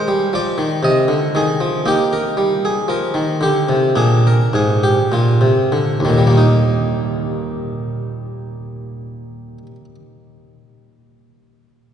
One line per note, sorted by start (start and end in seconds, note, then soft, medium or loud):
0.00 0.27 C5 medium
0.08 0.31 G3 medium
0.33 0.57 F3 medium
0.33 0.84 D5 medium
0.58 0.82 D#3 medium
0.83 1.07 C3 medium
0.83 1.27 D#5 medium
1.08 1.32 D3 medium
1.35 1.59 D#3 medium
1.35 1.79 G#4 medium
1.60 1.84 F3 medium
1.86 2.23 A#3 medium
1.86 3.94 D#4 soft
1.86 2.12 G4 medium
2.13 2.64 A#4 medium
2.37 2.75 G3 medium
2.65 2.90 G#4 medium
2.88 3.14 F3 soft
2.88 3.35 A#4 medium
3.14 3.40 D#3 medium
3.41 3.68 D3 medium
3.41 3.89 G4 medium
3.69 3.95 C3 soft
3.96 4.37 A#2 medium
3.96 6.32 D4 soft
3.96 4.25 G#4 medium
4.27 4.55 A#4 medium
4.53 4.96 G#2 soft
4.53 4.83 G#4 medium
4.83 5.12 G4 medium
5.12 5.41 A#2 soft
5.12 6.19 F4 medium
5.41 5.71 C3 soft
5.72 6.03 D3 soft
6.00 9.58 D#2 soft
6.05 9.66 A#2 soft
6.05 6.35 D#3 soft
6.18 9.75 G3 soft
6.27 9.85 A#3 soft
6.37 9.95 D#4 medium